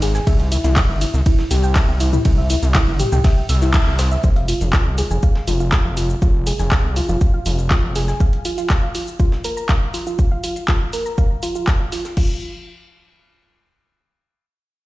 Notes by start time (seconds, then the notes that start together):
Already playing: G#1
0.02 G#4, snare, open hi-hat, shaker
0.15 G#5, snare, shaker
0.27 C2 E5, kick, ride, shaker
0.40 closed hi-hat
0.52 E4, open hi-hat, shaker
0.64 C2 E4, closed hi-hat, shaker
0.76 kick, snare, clap, ride, shaker
0.89 G1 E5
1.01 E4, open hi-hat, shaker
1.14 C2, shaker
1.26 E4, kick, ride, shaker
1.39 snare
1.51 C2 G4, open hi-hat, shaker
1.63 G5, shaker
1.76 E5, kick, snare, clap, ride, shaker
1.88 C2
2.00 E4, open hi-hat, shaker
2.13 E4, mid tom, shaker
2.25 C2, kick, ride, shaker
2.38 E5
2.50 E4, open hi-hat, shaker
2.63 C2, closed hi-hat, shaker
2.75 E4, kick, snare, clap, ride, shaker
2.87 G1
2.99 G4, mid tom, open hi-hat, shaker
3.12 C2 G5, mid tom, shaker
3.24 E5, kick, snare, ride, shaker
3.49 C2 E6, open hi-hat, shaker
3.62 E4, snare, shaker
3.74 E5, kick, clap, ride, shaker
3.87 C2
3.99 C5, snare, open hi-hat, shaker
4.11 E5, shaker
4.24 F1, kick, shaker
4.36 F5, closed hi-hat
4.48 F4, open hi-hat, shaker
4.61 F1, closed hi-hat, shaker
4.73 F4, kick, snare, clap, shaker
4.86 C2
4.98 G#4, open hi-hat, shaker
5.11 F1 G#5, shaker
5.23 F5, kick, shaker
5.35 snare
5.48 F1 F4, open hi-hat, shaker
5.60 F4, shaker
5.72 kick, snare, clap, shaker
5.85 F1 F5
5.97 F4, open hi-hat, shaker
6.10 shaker
6.22 F1 F4, kick, shaker
6.47 G#4, open hi-hat, shaker
6.59 F1 G#5, closed hi-hat, shaker
6.71 F5, kick, snare, clap, shaker
6.84 C2
6.96 F4, open hi-hat, shaker
7.09 F1 F4, shaker
7.21 kick, shaker
7.34 F5
7.46 F1 F4, open hi-hat, shaker
7.59 shaker
7.71 F4, kick, snare, clap, shaker
7.83 F1
7.95 G#4, snare, open hi-hat, shaker
8.08 G#5, snare, shaker
8.20 F5, kick, shaker
8.33 closed hi-hat
8.45 F4, open hi-hat, shaker
8.58 F4, closed hi-hat, shaker
8.70 kick, snare, clap, shaker
8.83 F5
8.95 F4, open hi-hat, shaker
9.07 shaker
9.20 F4, kick, shaker
9.32 snare
9.44 A#4, open hi-hat, shaker
9.57 A#5, shaker
9.69 F5, kick, snare, clap, shaker
9.94 F4, open hi-hat, shaker
10.07 F4, shaker
10.19 kick, shaker
10.31 F5
10.44 F4, open hi-hat, shaker
10.56 closed hi-hat, shaker
10.68 F4, kick, snare, clap, shaker
10.93 A#4, open hi-hat, shaker
11.06 A#5, shaker
11.18 F5, kick, shaker
11.43 F4, open hi-hat, shaker
11.55 F4, shaker
11.67 kick, snare, clap, shaker
11.80 F5
11.92 F4, snare, open hi-hat, shaker
12.05 snare, shaker
12.17 F4, kick, crash